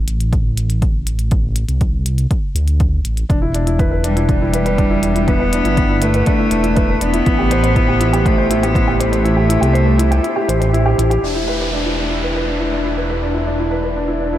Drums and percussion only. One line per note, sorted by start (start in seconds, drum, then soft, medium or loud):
0.08 closed hi-hat medium
0.20 closed hi-hat soft
0.33 kick medium
0.33 closed hi-hat soft
0.57 closed hi-hat medium
0.70 closed hi-hat soft
0.82 kick medium
0.82 closed hi-hat soft
1.07 closed hi-hat medium
1.19 closed hi-hat soft
1.31 kick medium
1.31 closed hi-hat soft
1.56 closed hi-hat medium
1.69 closed hi-hat soft
1.81 kick medium
1.81 closed hi-hat soft
2.06 closed hi-hat medium
2.18 closed hi-hat soft
2.31 kick medium
2.31 closed hi-hat soft
2.56 closed hi-hat medium
2.68 closed hi-hat soft
2.80 kick medium
2.80 closed hi-hat soft
3.05 closed hi-hat medium
3.17 closed hi-hat soft
3.30 kick loud
3.30 closed hi-hat soft
3.55 closed hi-hat medium
3.67 closed hi-hat soft
3.79 kick medium
3.79 closed hi-hat soft
4.04 closed hi-hat medium
4.17 closed hi-hat soft
4.29 kick medium
4.29 closed hi-hat soft
4.54 closed hi-hat medium
4.66 closed hi-hat soft
4.78 kick medium
4.78 closed hi-hat soft
5.03 closed hi-hat medium
5.16 closed hi-hat soft
5.28 kick medium
5.28 closed hi-hat soft
5.53 closed hi-hat medium
5.65 closed hi-hat soft
5.77 kick medium
5.77 closed hi-hat soft
6.02 closed hi-hat medium
6.14 closed hi-hat soft
6.26 kick medium
6.26 closed hi-hat soft
6.51 closed hi-hat medium
6.64 closed hi-hat soft
6.77 kick medium
6.77 closed hi-hat soft
7.01 closed hi-hat medium
7.14 closed hi-hat soft
7.26 kick medium
7.26 closed hi-hat soft
7.51 closed hi-hat medium
7.64 closed hi-hat soft
7.76 kick medium
7.76 closed hi-hat soft
8.01 closed hi-hat medium
8.14 closed hi-hat soft
8.26 kick medium
8.26 closed hi-hat soft
8.51 closed hi-hat medium
8.63 closed hi-hat soft
8.75 kick medium
8.75 closed hi-hat soft
9.01 closed hi-hat medium
9.13 closed hi-hat soft
9.26 closed hi-hat soft
9.50 closed hi-hat medium
9.63 closed hi-hat soft
9.75 closed hi-hat soft
9.99 closed hi-hat medium
10.12 closed hi-hat soft
10.24 closed hi-hat soft
10.49 closed hi-hat medium
10.62 closed hi-hat soft
10.74 closed hi-hat soft
10.99 closed hi-hat medium
11.11 closed hi-hat soft